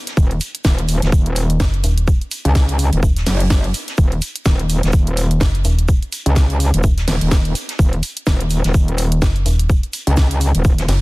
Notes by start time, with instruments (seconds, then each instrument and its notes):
Already playing: downlifter
0.07 snare, closed hi-hat
0.17 wobble bass D#1, kick, shaker
0.31 closed hi-hat
0.41 open hi-hat, shaker
0.55 closed hi-hat
0.65 wobble bass D#1, kick, snare, shaker
0.78 closed hi-hat
0.88 open hi-hat, shaker
1.02 wobble bass D#1, snare, closed hi-hat
1.12 wobble bass D#1, kick, shaker
1.26 closed hi-hat
1.36 open hi-hat, shaker
1.50 closed hi-hat
1.60 fm bass F#1, kick, snare, shaker
1.74 closed hi-hat
1.84 fm bass D#1, open hi-hat, shaker
1.98 closed hi-hat
2.08 kick, shaker
2.21 closed hi-hat
2.31 open hi-hat, shaker
2.45 wobble bass C#2, closed hi-hat
2.55 kick, snare, shaker
2.68 closed hi-hat
2.79 open hi-hat, shaker
2.92 wobble bass D#1, closed hi-hat
3.03 fm bass D#1, kick, shaker
3.16 snare, closed hi-hat
3.26 wobble bass F#1, snare, open hi-hat
3.40 closed hi-hat
3.50 kick, snare, shaker
3.64 closed hi-hat
3.74 open hi-hat, shaker
3.88 snare, closed hi-hat
3.98 wobble bass D#1, kick, shaker
4.12 closed hi-hat
4.22 open hi-hat, shaker
4.36 closed hi-hat
4.45 wobble bass D#1, kick, snare, shaker
4.59 closed hi-hat
4.70 open hi-hat, shaker
4.83 wobble bass D#1, snare, closed hi-hat
4.93 wobble bass D#1, kick, shaker
5.07 closed hi-hat
5.17 open hi-hat, shaker
5.31 closed hi-hat
5.40 fm bass F#1, kick, snare, shaker
5.55 closed hi-hat
5.65 fm bass D#1, open hi-hat, shaker
5.79 closed hi-hat
5.89 kick, shaker
6.03 closed hi-hat
6.12 open hi-hat, shaker
6.26 wobble bass C#2, closed hi-hat
6.35 kick, snare, shaker
6.50 closed hi-hat
6.60 open hi-hat, shaker
6.74 wobble bass D#1, closed hi-hat
6.83 fm bass D#1, kick, shaker
6.97 snare, closed hi-hat
7.08 wobble bass D#1, snare, open hi-hat
7.21 wobble bass D#1, closed hi-hat
7.31 kick, snare, shaker
7.45 closed hi-hat
7.55 open hi-hat, shaker
7.69 snare, closed hi-hat
7.79 wobble bass D#1, kick, shaker
7.93 closed hi-hat
8.03 open hi-hat, shaker
8.17 closed hi-hat
8.27 wobble bass D#1, kick, snare, shaker
8.40 closed hi-hat
8.50 open hi-hat, shaker
8.64 wobble bass D#1, snare, closed hi-hat
8.74 wobble bass D#1, kick, shaker
8.88 closed hi-hat
8.98 open hi-hat, shaker
9.12 closed hi-hat
9.22 fm bass F#1, kick, snare, shaker
9.36 closed hi-hat
9.46 fm bass D#1, open hi-hat, shaker
9.59 closed hi-hat
9.70 kick, shaker
9.83 closed hi-hat
9.93 open hi-hat, shaker
10.07 wobble bass C#2, closed hi-hat
10.17 kick, snare, shaker
10.31 closed hi-hat
10.41 open hi-hat, shaker
10.55 wobble bass D#1, closed hi-hat
10.65 wobble bass D#1, kick, shaker
10.78 snare, closed hi-hat
10.88 fm bass F#1, snare, open hi-hat